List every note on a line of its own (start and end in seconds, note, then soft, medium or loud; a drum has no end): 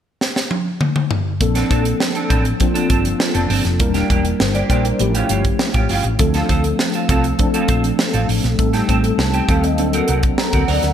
0.21 snare medium
0.36 snare medium
0.51 high tom medium
0.81 mid tom medium
0.96 mid tom medium
1.11 floor tom loud
1.40 1.62 A#1 loud
1.40 2.33 F3 medium
1.40 2.34 A#3 medium
1.40 2.34 C4 medium
1.40 2.34 D4 medium
1.40 2.34 A4 medium
1.40 muted clean electric guitar stroke soft
1.40 kick loud
1.40 closed hi-hat loud
1.55 1.69 C4 medium
1.55 1.69 D4 medium
1.55 1.70 A4 medium
1.55 snare soft
1.55 closed hi-hat medium
1.70 1.92 A#1 medium
1.70 1.86 C4 medium
1.70 1.85 D4 medium
1.70 1.84 A4 medium
1.70 kick medium
1.70 closed hi-hat medium
1.85 muted clean electric guitar stroke soft
1.85 closed hi-hat soft
2.00 muted clean electric guitar stroke soft
2.00 snare loud
2.15 2.28 C4 soft
2.15 2.29 D4 medium
2.15 2.29 A4 medium
2.15 closed hi-hat soft
2.30 2.52 A1 medium
2.30 2.51 C4 medium
2.30 2.44 D4 medium
2.30 2.44 A4 medium
2.30 kick medium
2.30 closed hi-hat medium
2.45 muted clean electric guitar stroke soft
2.45 closed hi-hat soft
2.60 3.53 F3 medium
2.60 3.53 A#3 medium
2.60 3.53 C4 medium
2.60 3.54 D4 medium
2.60 3.54 F4 medium
2.60 muted clean electric guitar stroke soft
2.60 kick medium
2.60 closed hi-hat medium
2.74 2.88 C4 medium
2.74 2.89 D4 medium
2.74 2.89 A4 medium
2.74 closed hi-hat medium
2.89 3.12 G1 medium
2.89 3.06 C4 medium
2.89 3.04 D4 medium
2.89 3.03 A4 medium
2.89 kick medium
2.89 closed hi-hat medium
3.04 muted clean electric guitar stroke soft
3.04 closed hi-hat medium
3.19 muted clean electric guitar stroke soft
3.19 snare loud
3.34 3.46 F1 medium
3.34 3.48 C4 medium
3.34 3.49 D4 medium
3.34 3.49 A4 medium
3.34 closed hi-hat medium
3.49 3.61 G1 medium
3.49 3.66 C4 medium
3.49 3.64 D4 medium
3.49 3.63 A4 medium
3.49 open hi-hat medium
3.64 3.80 F1 medium
3.64 muted clean electric guitar stroke soft
3.64 snare soft
3.64 closed hi-hat medium
3.79 4.02 E1 medium
3.79 4.73 G3 medium
3.79 4.73 A#3 medium
3.79 4.73 D4 medium
3.79 4.73 E4 medium
3.79 4.40 A#4 medium
3.79 muted clean electric guitar stroke soft
3.79 kick loud
3.79 closed hi-hat medium
3.94 4.08 A#3 medium
3.94 4.09 D4 medium
3.94 4.09 G4 medium
3.94 snare soft
3.94 closed hi-hat medium
4.09 4.31 E1 loud
4.09 4.26 A#3 medium
4.09 4.24 D4 medium
4.09 4.23 G4 medium
4.09 kick medium
4.09 closed hi-hat medium
4.25 muted clean electric guitar stroke soft
4.25 closed hi-hat medium
4.40 4.62 G1 loud
4.40 4.54 C5 medium
4.40 muted clean electric guitar stroke soft
4.40 snare loud
4.55 4.68 A#3 soft
4.55 4.69 D4 medium
4.55 4.69 G4 medium
4.55 4.69 D5 medium
4.55 closed hi-hat soft
4.70 4.91 A#1 medium
4.70 4.91 A#3 medium
4.70 4.84 D4 medium
4.70 4.83 G4 medium
4.70 4.84 C5 medium
4.70 kick medium
4.70 closed hi-hat medium
4.85 5.14 A#4 medium
4.85 muted clean electric guitar stroke soft
4.85 closed hi-hat soft
4.99 5.21 A1 loud
4.99 5.93 F3 medium
4.99 5.93 A3 medium
4.99 5.06 C4 medium
4.99 5.93 E4 medium
4.99 5.93 G4 medium
4.99 muted clean electric guitar stroke soft
4.99 closed hi-hat medium
5.06 5.96 C#4 medium
5.15 5.29 C#4 medium
5.15 5.29 F4 medium
5.15 5.30 G4 medium
5.15 closed hi-hat medium
5.29 5.51 G1 medium
5.29 5.46 C#4 medium
5.29 5.45 F4 medium
5.29 5.44 G4 medium
5.29 closed hi-hat medium
5.44 muted clean electric guitar stroke soft
5.44 kick medium
5.44 closed hi-hat medium
5.59 muted clean electric guitar stroke soft
5.59 snare loud
5.74 5.85 A1 loud
5.74 5.88 C#4 soft
5.74 5.89 F4 medium
5.74 5.89 G4 medium
5.74 kick medium
5.74 closed hi-hat medium
5.89 6.00 G1 medium
5.89 6.10 C#4 medium
5.89 6.04 F4 medium
5.89 6.03 G4 medium
5.89 open hi-hat medium
6.04 6.15 A1 medium
6.04 muted clean electric guitar stroke soft
6.04 closed hi-hat soft
6.19 6.41 D2 medium
6.19 7.12 F3 medium
6.19 7.12 A3 medium
6.19 7.12 C4 medium
6.19 7.13 D4 medium
6.19 7.13 A4 medium
6.19 muted clean electric guitar stroke soft
6.19 kick loud
6.19 closed hi-hat medium
6.34 6.48 C4 medium
6.34 6.48 F4 medium
6.34 6.49 A4 medium
6.34 snare soft
6.34 closed hi-hat medium
6.49 6.71 D2 medium
6.49 6.65 C4 medium
6.49 6.64 F4 medium
6.49 6.63 A4 medium
6.49 kick medium
6.49 closed hi-hat medium
6.64 muted clean electric guitar stroke soft
6.64 closed hi-hat soft
6.79 muted clean electric guitar stroke soft
6.79 snare loud
6.94 7.08 C4 soft
6.94 7.08 F4 medium
6.94 7.09 A4 medium
6.94 closed hi-hat soft
7.09 7.31 C2 medium
7.09 7.30 C4 medium
7.09 7.24 F4 medium
7.09 7.23 A4 medium
7.09 kick medium
7.09 closed hi-hat medium
7.24 muted clean electric guitar stroke soft
7.24 closed hi-hat soft
7.38 8.32 F3 medium
7.38 8.32 A3 medium
7.38 8.32 C4 medium
7.38 8.32 D4 medium
7.38 8.32 A4 medium
7.38 muted clean electric guitar stroke soft
7.38 kick medium
7.38 closed hi-hat medium
7.54 7.67 C4 medium
7.54 7.68 F4 medium
7.54 7.68 A4 medium
7.54 closed hi-hat medium
7.68 7.90 A#1 medium
7.68 7.85 C4 medium
7.68 7.83 F4 medium
7.68 7.82 A4 medium
7.68 kick medium
7.68 closed hi-hat medium
7.83 muted clean electric guitar stroke soft
7.83 closed hi-hat soft
7.99 muted clean electric guitar stroke soft
7.99 snare loud
8.13 8.25 A1 medium
8.13 8.27 C4 medium
8.13 8.28 F4 medium
8.13 8.28 A4 medium
8.13 closed hi-hat medium
8.28 8.39 A1 medium
8.28 muted clean electric guitar stroke soft
8.28 open hi-hat medium
8.43 8.55 A#1 loud
8.43 muted clean electric guitar stroke soft
8.43 snare soft
8.43 closed hi-hat medium
8.58 8.80 A1 medium
8.58 9.51 G3 medium
8.58 9.52 A3 medium
8.58 9.52 C4 medium
8.58 9.52 D#4 medium
8.58 9.52 A4 medium
8.58 muted clean electric guitar stroke soft
8.58 kick loud
8.58 closed hi-hat medium
8.73 8.87 C4 medium
8.73 8.88 G4 medium
8.73 8.88 A4 medium
8.73 snare soft
8.73 closed hi-hat soft
8.88 9.10 A1 loud
8.88 9.05 C4 medium
8.88 9.03 G4 medium
8.88 9.03 A4 medium
8.88 kick medium
8.88 closed hi-hat medium
9.04 muted clean electric guitar stroke soft
9.04 closed hi-hat soft
9.18 9.40 C2 loud
9.18 9.33 A5 medium
9.18 muted clean electric guitar stroke soft
9.18 snare loud
9.33 9.47 C4 soft
9.33 9.48 G4 medium
9.33 9.48 A4 medium
9.33 9.48 G5 medium
9.33 closed hi-hat soft
9.48 9.78 D#2 medium
9.48 9.69 C4 medium
9.48 9.63 G4 medium
9.48 9.62 A4 medium
9.48 9.63 F5 medium
9.48 kick medium
9.48 closed hi-hat medium
9.64 9.92 D#5 medium
9.64 muted clean electric guitar stroke medium
9.64 closed hi-hat soft
9.78 10.00 D2 medium
9.78 10.71 F#3 medium
9.78 10.71 A#3 medium
9.78 10.71 C4 medium
9.78 10.72 D4 medium
9.78 10.39 A4 medium
9.78 muted clean electric guitar stroke soft
9.78 closed hi-hat medium
9.93 10.07 C4 medium
9.93 10.07 F#4 medium
9.93 10.08 A#4 medium
9.93 closed hi-hat medium
10.08 10.30 C2 medium
10.08 10.25 C4 medium
10.08 10.23 F#4 medium
10.08 10.22 A#4 medium
10.08 closed hi-hat medium
10.23 muted clean electric guitar stroke soft
10.23 kick medium
10.23 closed hi-hat soft
10.38 10.66 A#5 medium
10.38 muted clean electric guitar stroke soft
10.38 snare loud
10.53 10.64 D2 medium
10.53 10.66 C4 medium
10.53 10.67 F#4 medium
10.53 10.68 A#4 medium
10.53 10.67 F#5 medium
10.53 kick medium
10.53 closed hi-hat medium
10.68 10.79 D2 medium
10.68 10.84 C4 medium
10.68 10.83 F#4 medium
10.68 10.82 A#4 medium
10.68 10.82 D5 medium
10.68 10.93 F#5 medium
10.68 open hi-hat medium
10.83 10.93 D2 medium
10.83 10.93 A#4 medium
10.83 muted clean electric guitar stroke soft
10.83 snare soft
10.83 closed hi-hat soft